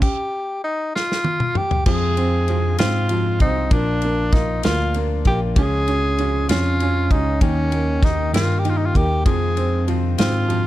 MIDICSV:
0, 0, Header, 1, 6, 480
1, 0, Start_track
1, 0, Tempo, 616016
1, 16, Time_signature, 6, 3, 24, 8
1, 8313, End_track
2, 0, Start_track
2, 0, Title_t, "Tenor saxophone"
2, 0, Program_c, 0, 66
2, 16, Note_on_c, 0, 67, 80
2, 465, Note_off_c, 0, 67, 0
2, 497, Note_on_c, 0, 63, 95
2, 720, Note_off_c, 0, 63, 0
2, 742, Note_on_c, 0, 65, 89
2, 1222, Note_on_c, 0, 67, 89
2, 1233, Note_off_c, 0, 65, 0
2, 1446, Note_off_c, 0, 67, 0
2, 1450, Note_on_c, 0, 68, 98
2, 2142, Note_off_c, 0, 68, 0
2, 2174, Note_on_c, 0, 65, 86
2, 2624, Note_off_c, 0, 65, 0
2, 2660, Note_on_c, 0, 63, 86
2, 2902, Note_on_c, 0, 62, 95
2, 2914, Note_off_c, 0, 63, 0
2, 3377, Note_on_c, 0, 63, 90
2, 3389, Note_off_c, 0, 62, 0
2, 3613, Note_off_c, 0, 63, 0
2, 3617, Note_on_c, 0, 65, 94
2, 3867, Note_off_c, 0, 65, 0
2, 4109, Note_on_c, 0, 67, 96
2, 4214, Note_off_c, 0, 67, 0
2, 4335, Note_on_c, 0, 68, 111
2, 5024, Note_off_c, 0, 68, 0
2, 5059, Note_on_c, 0, 65, 95
2, 5543, Note_on_c, 0, 63, 86
2, 5555, Note_off_c, 0, 65, 0
2, 5776, Note_on_c, 0, 61, 90
2, 5788, Note_off_c, 0, 63, 0
2, 6264, Note_on_c, 0, 63, 91
2, 6276, Note_off_c, 0, 61, 0
2, 6497, Note_off_c, 0, 63, 0
2, 6501, Note_on_c, 0, 65, 83
2, 6692, Note_on_c, 0, 67, 76
2, 6704, Note_off_c, 0, 65, 0
2, 6775, Note_on_c, 0, 65, 76
2, 6787, Note_off_c, 0, 67, 0
2, 6838, Note_on_c, 0, 63, 75
2, 6850, Note_off_c, 0, 65, 0
2, 6903, Note_on_c, 0, 65, 78
2, 6914, Note_off_c, 0, 63, 0
2, 6984, Note_on_c, 0, 67, 91
2, 6996, Note_off_c, 0, 65, 0
2, 7209, Note_off_c, 0, 67, 0
2, 7214, Note_on_c, 0, 68, 91
2, 7692, Note_off_c, 0, 68, 0
2, 7942, Note_on_c, 0, 65, 84
2, 8313, Note_off_c, 0, 65, 0
2, 8313, End_track
3, 0, Start_track
3, 0, Title_t, "Clean electric guitar"
3, 0, Program_c, 1, 27
3, 1457, Note_on_c, 1, 41, 81
3, 1460, Note_on_c, 1, 48, 69
3, 1465, Note_on_c, 1, 53, 74
3, 1466, Note_on_c, 1, 56, 81
3, 1467, Note_on_c, 1, 60, 81
3, 1470, Note_on_c, 1, 65, 77
3, 1687, Note_off_c, 1, 65, 0
3, 1692, Note_off_c, 1, 60, 0
3, 1696, Note_on_c, 1, 65, 51
3, 1697, Note_off_c, 1, 41, 0
3, 1698, Note_off_c, 1, 48, 0
3, 1700, Note_off_c, 1, 53, 0
3, 1701, Note_off_c, 1, 56, 0
3, 1701, Note_on_c, 1, 60, 44
3, 1712, Note_on_c, 1, 56, 42
3, 1716, Note_on_c, 1, 53, 37
3, 1922, Note_off_c, 1, 53, 0
3, 1930, Note_off_c, 1, 56, 0
3, 1932, Note_on_c, 1, 53, 57
3, 1936, Note_off_c, 1, 65, 0
3, 1939, Note_off_c, 1, 60, 0
3, 1939, Note_on_c, 1, 56, 53
3, 1948, Note_on_c, 1, 60, 55
3, 1954, Note_on_c, 1, 65, 59
3, 2165, Note_off_c, 1, 65, 0
3, 2168, Note_off_c, 1, 60, 0
3, 2173, Note_off_c, 1, 56, 0
3, 2174, Note_off_c, 1, 53, 0
3, 2175, Note_on_c, 1, 65, 70
3, 2177, Note_on_c, 1, 60, 65
3, 2182, Note_on_c, 1, 56, 67
3, 2184, Note_on_c, 1, 53, 69
3, 2189, Note_on_c, 1, 48, 65
3, 2191, Note_on_c, 1, 41, 60
3, 2404, Note_off_c, 1, 53, 0
3, 2413, Note_off_c, 1, 56, 0
3, 2413, Note_on_c, 1, 53, 58
3, 2415, Note_off_c, 1, 65, 0
3, 2417, Note_off_c, 1, 60, 0
3, 2422, Note_on_c, 1, 56, 65
3, 2423, Note_off_c, 1, 41, 0
3, 2423, Note_off_c, 1, 48, 0
3, 2430, Note_on_c, 1, 60, 59
3, 2436, Note_on_c, 1, 65, 67
3, 2640, Note_off_c, 1, 65, 0
3, 2649, Note_on_c, 1, 65, 58
3, 2650, Note_off_c, 1, 60, 0
3, 2655, Note_off_c, 1, 53, 0
3, 2655, Note_off_c, 1, 56, 0
3, 2659, Note_on_c, 1, 60, 49
3, 2664, Note_on_c, 1, 56, 49
3, 2670, Note_on_c, 1, 53, 45
3, 2890, Note_off_c, 1, 53, 0
3, 2892, Note_off_c, 1, 65, 0
3, 2894, Note_on_c, 1, 46, 77
3, 2897, Note_off_c, 1, 60, 0
3, 2899, Note_off_c, 1, 56, 0
3, 2899, Note_on_c, 1, 53, 77
3, 2902, Note_on_c, 1, 58, 80
3, 2909, Note_on_c, 1, 62, 78
3, 2910, Note_on_c, 1, 65, 86
3, 3124, Note_off_c, 1, 65, 0
3, 3133, Note_on_c, 1, 65, 50
3, 3135, Note_off_c, 1, 46, 0
3, 3138, Note_off_c, 1, 53, 0
3, 3139, Note_off_c, 1, 58, 0
3, 3139, Note_off_c, 1, 62, 0
3, 3148, Note_on_c, 1, 62, 51
3, 3154, Note_on_c, 1, 58, 39
3, 3374, Note_off_c, 1, 65, 0
3, 3377, Note_on_c, 1, 53, 58
3, 3378, Note_off_c, 1, 58, 0
3, 3382, Note_off_c, 1, 62, 0
3, 3388, Note_on_c, 1, 58, 60
3, 3399, Note_on_c, 1, 65, 63
3, 3610, Note_off_c, 1, 65, 0
3, 3616, Note_off_c, 1, 53, 0
3, 3620, Note_on_c, 1, 65, 73
3, 3622, Note_off_c, 1, 58, 0
3, 3625, Note_on_c, 1, 62, 73
3, 3632, Note_on_c, 1, 58, 65
3, 3635, Note_on_c, 1, 53, 60
3, 3637, Note_on_c, 1, 46, 62
3, 3851, Note_off_c, 1, 53, 0
3, 3858, Note_off_c, 1, 65, 0
3, 3860, Note_off_c, 1, 58, 0
3, 3860, Note_off_c, 1, 62, 0
3, 3861, Note_on_c, 1, 53, 65
3, 3866, Note_off_c, 1, 46, 0
3, 3870, Note_on_c, 1, 58, 59
3, 3877, Note_on_c, 1, 62, 69
3, 3882, Note_on_c, 1, 65, 66
3, 4093, Note_off_c, 1, 65, 0
3, 4098, Note_off_c, 1, 53, 0
3, 4102, Note_on_c, 1, 65, 54
3, 4103, Note_off_c, 1, 58, 0
3, 4106, Note_off_c, 1, 62, 0
3, 4114, Note_on_c, 1, 62, 50
3, 4122, Note_on_c, 1, 58, 48
3, 4339, Note_off_c, 1, 65, 0
3, 4345, Note_off_c, 1, 62, 0
3, 4345, Note_on_c, 1, 49, 78
3, 4347, Note_on_c, 1, 53, 86
3, 4349, Note_off_c, 1, 58, 0
3, 4352, Note_on_c, 1, 56, 85
3, 4357, Note_on_c, 1, 61, 94
3, 4357, Note_on_c, 1, 65, 90
3, 4570, Note_off_c, 1, 65, 0
3, 4580, Note_off_c, 1, 49, 0
3, 4580, Note_on_c, 1, 65, 56
3, 4581, Note_off_c, 1, 53, 0
3, 4582, Note_off_c, 1, 61, 0
3, 4584, Note_off_c, 1, 56, 0
3, 4591, Note_on_c, 1, 61, 47
3, 4601, Note_on_c, 1, 56, 45
3, 4813, Note_off_c, 1, 56, 0
3, 4817, Note_off_c, 1, 65, 0
3, 4817, Note_on_c, 1, 53, 57
3, 4819, Note_off_c, 1, 61, 0
3, 4823, Note_on_c, 1, 56, 57
3, 4828, Note_on_c, 1, 61, 61
3, 4837, Note_on_c, 1, 65, 60
3, 5045, Note_off_c, 1, 65, 0
3, 5046, Note_off_c, 1, 61, 0
3, 5052, Note_off_c, 1, 56, 0
3, 5054, Note_on_c, 1, 65, 71
3, 5056, Note_off_c, 1, 53, 0
3, 5056, Note_on_c, 1, 61, 66
3, 5061, Note_on_c, 1, 56, 70
3, 5066, Note_on_c, 1, 53, 60
3, 5068, Note_on_c, 1, 49, 64
3, 5290, Note_off_c, 1, 53, 0
3, 5294, Note_off_c, 1, 65, 0
3, 5295, Note_off_c, 1, 61, 0
3, 5298, Note_off_c, 1, 56, 0
3, 5299, Note_on_c, 1, 53, 62
3, 5302, Note_off_c, 1, 49, 0
3, 5307, Note_on_c, 1, 56, 57
3, 5313, Note_on_c, 1, 61, 72
3, 5321, Note_on_c, 1, 65, 68
3, 5532, Note_off_c, 1, 65, 0
3, 5537, Note_off_c, 1, 53, 0
3, 5541, Note_off_c, 1, 56, 0
3, 5541, Note_off_c, 1, 61, 0
3, 5541, Note_on_c, 1, 65, 53
3, 5551, Note_on_c, 1, 61, 49
3, 5559, Note_on_c, 1, 56, 48
3, 5776, Note_on_c, 1, 51, 74
3, 5778, Note_off_c, 1, 56, 0
3, 5778, Note_off_c, 1, 65, 0
3, 5781, Note_on_c, 1, 58, 84
3, 5783, Note_off_c, 1, 61, 0
3, 5788, Note_on_c, 1, 63, 87
3, 5790, Note_on_c, 1, 67, 88
3, 6004, Note_off_c, 1, 67, 0
3, 6013, Note_off_c, 1, 63, 0
3, 6013, Note_on_c, 1, 67, 50
3, 6015, Note_off_c, 1, 51, 0
3, 6018, Note_off_c, 1, 58, 0
3, 6022, Note_on_c, 1, 63, 45
3, 6032, Note_on_c, 1, 58, 42
3, 6249, Note_off_c, 1, 58, 0
3, 6252, Note_on_c, 1, 51, 58
3, 6254, Note_off_c, 1, 67, 0
3, 6255, Note_off_c, 1, 63, 0
3, 6258, Note_on_c, 1, 58, 55
3, 6264, Note_on_c, 1, 63, 61
3, 6270, Note_on_c, 1, 67, 65
3, 6481, Note_off_c, 1, 67, 0
3, 6489, Note_off_c, 1, 63, 0
3, 6490, Note_on_c, 1, 67, 65
3, 6492, Note_off_c, 1, 58, 0
3, 6493, Note_off_c, 1, 51, 0
3, 6498, Note_on_c, 1, 63, 63
3, 6502, Note_on_c, 1, 58, 66
3, 6506, Note_on_c, 1, 51, 58
3, 6720, Note_off_c, 1, 51, 0
3, 6727, Note_off_c, 1, 58, 0
3, 6729, Note_on_c, 1, 51, 57
3, 6732, Note_off_c, 1, 67, 0
3, 6733, Note_off_c, 1, 63, 0
3, 6737, Note_on_c, 1, 58, 59
3, 6742, Note_on_c, 1, 63, 64
3, 6748, Note_on_c, 1, 67, 61
3, 6960, Note_off_c, 1, 67, 0
3, 6969, Note_on_c, 1, 67, 49
3, 6970, Note_off_c, 1, 63, 0
3, 6971, Note_off_c, 1, 51, 0
3, 6975, Note_off_c, 1, 58, 0
3, 6980, Note_on_c, 1, 63, 47
3, 6988, Note_on_c, 1, 58, 44
3, 7210, Note_on_c, 1, 41, 82
3, 7211, Note_off_c, 1, 67, 0
3, 7214, Note_on_c, 1, 48, 75
3, 7216, Note_off_c, 1, 58, 0
3, 7217, Note_off_c, 1, 63, 0
3, 7217, Note_on_c, 1, 51, 82
3, 7219, Note_on_c, 1, 56, 85
3, 7222, Note_on_c, 1, 60, 77
3, 7222, Note_on_c, 1, 65, 86
3, 7436, Note_off_c, 1, 65, 0
3, 7442, Note_off_c, 1, 60, 0
3, 7445, Note_on_c, 1, 65, 49
3, 7449, Note_off_c, 1, 56, 0
3, 7452, Note_off_c, 1, 41, 0
3, 7452, Note_on_c, 1, 60, 45
3, 7454, Note_off_c, 1, 48, 0
3, 7456, Note_off_c, 1, 51, 0
3, 7458, Note_on_c, 1, 56, 42
3, 7465, Note_on_c, 1, 51, 41
3, 7682, Note_off_c, 1, 51, 0
3, 7688, Note_off_c, 1, 56, 0
3, 7689, Note_off_c, 1, 65, 0
3, 7691, Note_on_c, 1, 51, 57
3, 7693, Note_off_c, 1, 60, 0
3, 7697, Note_on_c, 1, 56, 61
3, 7708, Note_on_c, 1, 60, 56
3, 7713, Note_on_c, 1, 65, 57
3, 7924, Note_off_c, 1, 65, 0
3, 7928, Note_off_c, 1, 60, 0
3, 7931, Note_off_c, 1, 56, 0
3, 7933, Note_off_c, 1, 51, 0
3, 7933, Note_on_c, 1, 65, 76
3, 7937, Note_on_c, 1, 60, 68
3, 7940, Note_on_c, 1, 56, 63
3, 7942, Note_on_c, 1, 51, 59
3, 7945, Note_on_c, 1, 48, 62
3, 7950, Note_on_c, 1, 41, 61
3, 8163, Note_off_c, 1, 51, 0
3, 8172, Note_off_c, 1, 56, 0
3, 8172, Note_on_c, 1, 51, 59
3, 8173, Note_off_c, 1, 65, 0
3, 8176, Note_off_c, 1, 60, 0
3, 8179, Note_off_c, 1, 48, 0
3, 8182, Note_off_c, 1, 41, 0
3, 8182, Note_on_c, 1, 56, 60
3, 8187, Note_on_c, 1, 60, 62
3, 8192, Note_on_c, 1, 65, 67
3, 8313, Note_off_c, 1, 51, 0
3, 8313, Note_off_c, 1, 56, 0
3, 8313, Note_off_c, 1, 60, 0
3, 8313, Note_off_c, 1, 65, 0
3, 8313, End_track
4, 0, Start_track
4, 0, Title_t, "Felt piano"
4, 0, Program_c, 2, 0
4, 0, Control_c, 2, 64, 127
4, 25, Control_c, 2, 64, 0
4, 1453, Note_on_c, 2, 53, 67
4, 1609, Control_c, 2, 64, 127
4, 1689, Note_on_c, 2, 60, 52
4, 1930, Note_off_c, 2, 53, 0
4, 1942, Note_on_c, 2, 53, 56
4, 2163, Note_off_c, 2, 60, 0
4, 2175, Note_on_c, 2, 60, 59
4, 2406, Note_off_c, 2, 53, 0
4, 2418, Note_on_c, 2, 53, 53
4, 2648, Note_off_c, 2, 60, 0
4, 2660, Note_on_c, 2, 60, 53
4, 2883, Note_off_c, 2, 53, 0
4, 2891, Note_off_c, 2, 60, 0
4, 2899, Note_on_c, 2, 58, 70
4, 2905, Control_c, 2, 64, 0
4, 3023, Control_c, 2, 64, 127
4, 3140, Note_off_c, 2, 58, 0
4, 3152, Note_on_c, 2, 58, 54
4, 3368, Note_off_c, 2, 58, 0
4, 3379, Note_on_c, 2, 58, 56
4, 3609, Note_off_c, 2, 58, 0
4, 3620, Note_on_c, 2, 58, 60
4, 3849, Note_off_c, 2, 58, 0
4, 3860, Note_on_c, 2, 58, 55
4, 4090, Note_off_c, 2, 58, 0
4, 4102, Note_on_c, 2, 58, 58
4, 4331, Note_off_c, 2, 58, 0
4, 4346, Control_c, 2, 64, 0
4, 4348, Note_on_c, 2, 61, 69
4, 4464, Control_c, 2, 64, 127
4, 4572, Note_off_c, 2, 61, 0
4, 4583, Note_on_c, 2, 61, 59
4, 4816, Note_off_c, 2, 61, 0
4, 4827, Note_on_c, 2, 61, 62
4, 5062, Note_off_c, 2, 61, 0
4, 5074, Note_on_c, 2, 61, 57
4, 5307, Note_off_c, 2, 61, 0
4, 5319, Note_on_c, 2, 61, 57
4, 5547, Note_off_c, 2, 61, 0
4, 5559, Note_on_c, 2, 61, 57
4, 5780, Note_off_c, 2, 61, 0
4, 5784, Control_c, 2, 64, 0
4, 5789, Note_on_c, 2, 51, 69
4, 5943, Control_c, 2, 64, 127
4, 6019, Note_on_c, 2, 58, 56
4, 6254, Note_off_c, 2, 51, 0
4, 6266, Note_on_c, 2, 51, 56
4, 6481, Note_off_c, 2, 58, 0
4, 6493, Note_on_c, 2, 58, 59
4, 6725, Note_off_c, 2, 51, 0
4, 6737, Note_on_c, 2, 51, 52
4, 6961, Note_off_c, 2, 58, 0
4, 6972, Note_on_c, 2, 58, 56
4, 7201, Note_off_c, 2, 51, 0
4, 7206, Note_off_c, 2, 58, 0
4, 7214, Note_on_c, 2, 53, 63
4, 7223, Control_c, 2, 64, 0
4, 7343, Control_c, 2, 64, 127
4, 7459, Note_on_c, 2, 60, 53
4, 7684, Note_off_c, 2, 53, 0
4, 7696, Note_on_c, 2, 53, 55
4, 7924, Note_off_c, 2, 60, 0
4, 7935, Note_on_c, 2, 60, 56
4, 8152, Note_off_c, 2, 53, 0
4, 8164, Note_on_c, 2, 53, 56
4, 8313, Note_off_c, 2, 53, 0
4, 8313, Note_off_c, 2, 60, 0
4, 8313, End_track
5, 0, Start_track
5, 0, Title_t, "Tine electric piano"
5, 0, Program_c, 3, 4
5, 1452, Note_on_c, 3, 41, 98
5, 2143, Note_off_c, 3, 41, 0
5, 2180, Note_on_c, 3, 44, 92
5, 2629, Note_off_c, 3, 44, 0
5, 2655, Note_on_c, 3, 36, 85
5, 2881, Note_off_c, 3, 36, 0
5, 2892, Note_on_c, 3, 34, 102
5, 3583, Note_off_c, 3, 34, 0
5, 3619, Note_on_c, 3, 38, 94
5, 4068, Note_off_c, 3, 38, 0
5, 4094, Note_on_c, 3, 34, 96
5, 4320, Note_off_c, 3, 34, 0
5, 4337, Note_on_c, 3, 37, 102
5, 5025, Note_off_c, 3, 37, 0
5, 5059, Note_on_c, 3, 41, 87
5, 5508, Note_off_c, 3, 41, 0
5, 5536, Note_on_c, 3, 37, 91
5, 5761, Note_off_c, 3, 37, 0
5, 5778, Note_on_c, 3, 39, 105
5, 6465, Note_off_c, 3, 39, 0
5, 6494, Note_on_c, 3, 43, 83
5, 6945, Note_off_c, 3, 43, 0
5, 6978, Note_on_c, 3, 39, 88
5, 7202, Note_off_c, 3, 39, 0
5, 7214, Note_on_c, 3, 41, 98
5, 7903, Note_off_c, 3, 41, 0
5, 7940, Note_on_c, 3, 44, 96
5, 8313, Note_off_c, 3, 44, 0
5, 8313, End_track
6, 0, Start_track
6, 0, Title_t, "Drums"
6, 14, Note_on_c, 9, 49, 78
6, 15, Note_on_c, 9, 36, 91
6, 92, Note_off_c, 9, 49, 0
6, 93, Note_off_c, 9, 36, 0
6, 748, Note_on_c, 9, 38, 55
6, 826, Note_off_c, 9, 38, 0
6, 870, Note_on_c, 9, 38, 54
6, 948, Note_off_c, 9, 38, 0
6, 970, Note_on_c, 9, 48, 75
6, 1048, Note_off_c, 9, 48, 0
6, 1092, Note_on_c, 9, 47, 75
6, 1169, Note_off_c, 9, 47, 0
6, 1210, Note_on_c, 9, 45, 78
6, 1288, Note_off_c, 9, 45, 0
6, 1332, Note_on_c, 9, 43, 84
6, 1410, Note_off_c, 9, 43, 0
6, 1448, Note_on_c, 9, 49, 89
6, 1451, Note_on_c, 9, 36, 107
6, 1526, Note_off_c, 9, 49, 0
6, 1529, Note_off_c, 9, 36, 0
6, 1691, Note_on_c, 9, 51, 46
6, 1769, Note_off_c, 9, 51, 0
6, 1931, Note_on_c, 9, 51, 44
6, 2009, Note_off_c, 9, 51, 0
6, 2170, Note_on_c, 9, 51, 79
6, 2183, Note_on_c, 9, 38, 115
6, 2248, Note_off_c, 9, 51, 0
6, 2261, Note_off_c, 9, 38, 0
6, 2409, Note_on_c, 9, 51, 47
6, 2486, Note_off_c, 9, 51, 0
6, 2648, Note_on_c, 9, 51, 44
6, 2652, Note_on_c, 9, 36, 77
6, 2726, Note_off_c, 9, 51, 0
6, 2730, Note_off_c, 9, 36, 0
6, 2891, Note_on_c, 9, 51, 58
6, 2892, Note_on_c, 9, 36, 108
6, 2969, Note_off_c, 9, 51, 0
6, 2970, Note_off_c, 9, 36, 0
6, 3129, Note_on_c, 9, 51, 47
6, 3207, Note_off_c, 9, 51, 0
6, 3370, Note_on_c, 9, 51, 46
6, 3371, Note_on_c, 9, 36, 100
6, 3384, Note_on_c, 9, 38, 37
6, 3448, Note_off_c, 9, 51, 0
6, 3449, Note_off_c, 9, 36, 0
6, 3461, Note_off_c, 9, 38, 0
6, 3610, Note_on_c, 9, 51, 76
6, 3623, Note_on_c, 9, 38, 109
6, 3688, Note_off_c, 9, 51, 0
6, 3701, Note_off_c, 9, 38, 0
6, 3852, Note_on_c, 9, 51, 45
6, 3930, Note_off_c, 9, 51, 0
6, 4090, Note_on_c, 9, 51, 43
6, 4094, Note_on_c, 9, 36, 75
6, 4168, Note_off_c, 9, 51, 0
6, 4172, Note_off_c, 9, 36, 0
6, 4333, Note_on_c, 9, 51, 60
6, 4334, Note_on_c, 9, 36, 104
6, 4411, Note_off_c, 9, 51, 0
6, 4412, Note_off_c, 9, 36, 0
6, 4578, Note_on_c, 9, 51, 48
6, 4656, Note_off_c, 9, 51, 0
6, 4819, Note_on_c, 9, 51, 45
6, 4897, Note_off_c, 9, 51, 0
6, 5058, Note_on_c, 9, 51, 79
6, 5072, Note_on_c, 9, 38, 113
6, 5136, Note_off_c, 9, 51, 0
6, 5150, Note_off_c, 9, 38, 0
6, 5301, Note_on_c, 9, 51, 48
6, 5378, Note_off_c, 9, 51, 0
6, 5537, Note_on_c, 9, 36, 82
6, 5538, Note_on_c, 9, 51, 42
6, 5615, Note_off_c, 9, 36, 0
6, 5616, Note_off_c, 9, 51, 0
6, 5776, Note_on_c, 9, 36, 101
6, 5776, Note_on_c, 9, 51, 62
6, 5854, Note_off_c, 9, 36, 0
6, 5854, Note_off_c, 9, 51, 0
6, 6015, Note_on_c, 9, 51, 45
6, 6093, Note_off_c, 9, 51, 0
6, 6254, Note_on_c, 9, 36, 100
6, 6258, Note_on_c, 9, 51, 43
6, 6272, Note_on_c, 9, 38, 35
6, 6332, Note_off_c, 9, 36, 0
6, 6336, Note_off_c, 9, 51, 0
6, 6350, Note_off_c, 9, 38, 0
6, 6500, Note_on_c, 9, 51, 78
6, 6513, Note_on_c, 9, 38, 103
6, 6577, Note_off_c, 9, 51, 0
6, 6591, Note_off_c, 9, 38, 0
6, 6739, Note_on_c, 9, 51, 47
6, 6817, Note_off_c, 9, 51, 0
6, 6975, Note_on_c, 9, 36, 78
6, 6979, Note_on_c, 9, 51, 43
6, 7053, Note_off_c, 9, 36, 0
6, 7057, Note_off_c, 9, 51, 0
6, 7213, Note_on_c, 9, 36, 108
6, 7214, Note_on_c, 9, 51, 58
6, 7291, Note_off_c, 9, 36, 0
6, 7292, Note_off_c, 9, 51, 0
6, 7456, Note_on_c, 9, 51, 49
6, 7534, Note_off_c, 9, 51, 0
6, 7697, Note_on_c, 9, 51, 44
6, 7775, Note_off_c, 9, 51, 0
6, 7935, Note_on_c, 9, 51, 81
6, 7948, Note_on_c, 9, 38, 106
6, 8013, Note_off_c, 9, 51, 0
6, 8026, Note_off_c, 9, 38, 0
6, 8180, Note_on_c, 9, 51, 47
6, 8258, Note_off_c, 9, 51, 0
6, 8313, End_track
0, 0, End_of_file